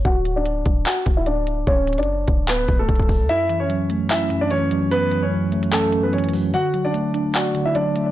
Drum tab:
HH |x-----------x-----------x-----------x-----------x-----------x-----------x-----------x-----------|x-----------x--x--x--x--------------x-----------x-----------x-----------x---x---x---o-----------|x-----------x-----------x-----------x-----------x-----------x-----------x-----------x-----------|x-----------x-----------------------x-----x-----x-----------x-----------x--x--x--x--o-----------|
CP |------------------------------------------------x-----------------------------------------------|------------------------------------------------x-----------------------------------------------|------------------------------------------------x-----------------------------------------------|------------------------------------------------x-----------------------------------------------|
BD |o-----------------------------------o-----------------------o-----------------------------------|o-----------------------------------o-----------------------o-----------o-----o-----o-----------|------------------------------------------------------------------------------------------------|------------------------------------------------------------------------------------------------|

HH |x-----------x-----------x-----------x-----------x-----------x-----------x-----------x-----------|
CP |------------------------------------------------x-----------------------------------------------|
BD |------------------------------------------------------------------------------------------------|